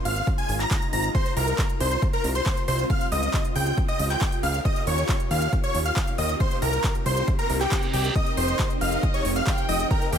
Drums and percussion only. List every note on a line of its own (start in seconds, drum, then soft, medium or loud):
0.05 open hi-hat loud
0.16 closed hi-hat medium
0.27 kick loud
0.27 closed hi-hat medium
0.38 closed hi-hat medium
0.49 open hi-hat loud
0.60 clap soft
0.60 closed hi-hat medium
0.71 kick loud
0.71 clap loud
0.71 closed hi-hat medium
0.82 closed hi-hat medium
0.93 open hi-hat loud
1.04 closed hi-hat medium
1.15 kick loud
1.15 closed hi-hat medium
1.26 closed hi-hat medium
1.37 open hi-hat loud
1.48 closed hi-hat medium
1.59 kick loud
1.59 clap loud
1.59 closed hi-hat medium
1.70 closed hi-hat medium
1.80 open hi-hat loud
1.91 closed hi-hat medium
2.02 kick loud
2.02 closed hi-hat medium
2.13 closed hi-hat medium
2.24 open hi-hat loud
2.35 closed hi-hat medium
2.46 kick loud
2.46 clap loud
2.46 closed hi-hat medium
2.57 closed hi-hat medium
2.68 open hi-hat loud
2.79 closed hi-hat medium
2.90 kick loud
2.90 closed hi-hat medium
3.01 closed hi-hat medium
3.12 open hi-hat loud
3.23 closed hi-hat medium
3.34 kick loud
3.34 clap loud
3.34 closed hi-hat medium
3.45 closed hi-hat medium
3.56 open hi-hat loud
3.67 closed hi-hat medium
3.78 kick loud
3.78 closed hi-hat medium
3.88 closed hi-hat medium
3.99 open hi-hat loud
4.10 clap soft
4.10 closed hi-hat medium
4.21 kick loud
4.21 clap loud
4.21 closed hi-hat medium
4.32 closed hi-hat medium
4.43 open hi-hat loud
4.54 closed hi-hat medium
4.65 kick loud
4.65 closed hi-hat medium
4.76 closed hi-hat medium
4.87 open hi-hat loud
4.98 closed hi-hat medium
5.09 kick loud
5.09 clap loud
5.09 closed hi-hat medium
5.20 closed hi-hat medium
5.31 open hi-hat loud
5.42 closed hi-hat medium
5.53 kick loud
5.53 closed hi-hat medium
5.64 closed hi-hat medium
5.75 open hi-hat loud
5.85 closed hi-hat medium
5.96 kick loud
5.96 clap loud
5.96 closed hi-hat medium
6.07 closed hi-hat medium
6.18 open hi-hat loud
6.29 closed hi-hat medium
6.40 kick loud
6.40 closed hi-hat medium
6.51 closed hi-hat medium
6.62 open hi-hat loud
6.73 closed hi-hat medium
6.84 kick loud
6.84 clap loud
6.84 closed hi-hat medium
6.95 closed hi-hat medium
7.06 open hi-hat loud
7.17 closed hi-hat medium
7.28 kick loud
7.28 closed hi-hat medium
7.39 closed hi-hat medium
7.50 open hi-hat loud
7.61 clap soft
7.61 closed hi-hat medium
7.72 kick loud
7.72 clap loud
7.72 closed hi-hat medium
7.83 closed hi-hat medium
7.94 open hi-hat loud
8.05 closed hi-hat medium
8.15 kick loud
8.15 closed hi-hat medium
8.26 closed hi-hat medium
8.37 open hi-hat loud
8.48 closed hi-hat medium
8.59 kick loud
8.59 clap loud
8.59 closed hi-hat medium
8.70 closed hi-hat medium
8.81 open hi-hat loud
8.92 closed hi-hat medium
9.03 kick loud
9.03 closed hi-hat medium
9.14 closed hi-hat medium
9.25 open hi-hat loud
9.36 closed hi-hat medium
9.47 kick loud
9.47 clap loud
9.47 closed hi-hat medium
9.58 closed hi-hat medium
9.69 open hi-hat loud
9.80 closed hi-hat medium
9.91 kick loud
9.91 closed hi-hat medium
10.02 closed hi-hat medium
10.13 open hi-hat loud